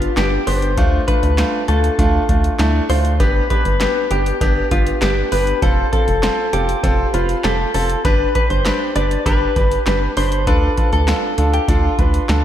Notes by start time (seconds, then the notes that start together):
Already playing: F4
0.02 closed hi-hat
0.17 G1 B3 D4 G4, snare, clap, closed hi-hat
0.47 G1 B3 D4 G4 C5, open hi-hat
0.62 closed hi-hat
0.77 D2 A3 D4 F4, kick, closed hi-hat
1.08 A3 D4 F4 B4, kick, closed hi-hat
1.23 D2, closed hi-hat
1.38 A3 D4 F4, snare, clap, closed hi-hat
1.68 D2 A3 D4 F4 A4, closed hi-hat
1.84 closed hi-hat
1.99 D2 A3 D4 F4, kick, closed hi-hat
2.29 D2 A3 D4 F4, kick, closed hi-hat
2.44 closed hi-hat
2.59 D2 A3 D4 E4, snare, clap, closed hi-hat
2.90 D2 A3 D4 F4 C5, open hi-hat
3.05 closed hi-hat
3.20 G1 B3 D4 G4 B4, kick, closed hi-hat
3.50 B3 D4 G4 B4, kick, closed hi-hat
3.65 G1, closed hi-hat
3.80 B3 D4 G4, snare, clap, closed hi-hat
4.11 G1 B3 D4 G4, closed hi-hat
4.26 closed hi-hat
4.41 G1 B3 D4 G4, kick, closed hi-hat
4.71 G1 B3 D4 F4 G4, kick, closed hi-hat
4.87 closed hi-hat
5.02 G1 B3 D4 G4, snare, clap, closed hi-hat
5.32 G1 B3 D4 G4 B4, open hi-hat
5.47 closed hi-hat
5.62 F1 C4 F4 A4, kick, closed hi-hat
5.93 C4 F4 A4, kick, closed hi-hat
6.08 F1, closed hi-hat
6.23 C4 F4 A4, snare, clap, closed hi-hat
6.53 F1 C4 F4 G4 A4, closed hi-hat
6.69 closed hi-hat
6.83 F1 C4 F4 A4, kick, closed hi-hat
7.14 F1 C4 F4 B4, closed hi-hat
7.29 closed hi-hat
7.44 F1 C4 F4 G4 A4, snare, clap, closed hi-hat
7.74 F1 C4 F4 A4, open hi-hat
7.90 closed hi-hat
8.05 G1 D4 G4 B4, kick, closed hi-hat
8.35 D4 G4 B4, kick, closed hi-hat
8.50 G1 C5, closed hi-hat
8.65 D4 G4 B4, snare, clap, closed hi-hat
8.96 G1 D4 G4 B4 D5, closed hi-hat
9.11 closed hi-hat
9.26 G1 D4 G4 B4, kick, closed hi-hat
9.56 G1 D4 G4 B4, kick, closed hi-hat
9.71 closed hi-hat
9.86 G1 D4 G4 B4, snare, clap, closed hi-hat
10.17 G1 D4 G4 B4 C5, open hi-hat
10.32 closed hi-hat
10.47 D2 D4 F4 A4 B4, kick, closed hi-hat
10.78 D4 F4 A4, kick, closed hi-hat
10.93 D2 A4, closed hi-hat
11.08 D4 F4 A4, snare, clap, closed hi-hat
11.38 D2 D4 F4 A4, closed hi-hat
11.54 G4, closed hi-hat
11.68 D2 D4 F4 A4, kick, closed hi-hat
11.99 D2 D4 F4 B4, kick, closed hi-hat
12.14 closed hi-hat
12.29 D2 D4 F4 A4, snare, clap, closed hi-hat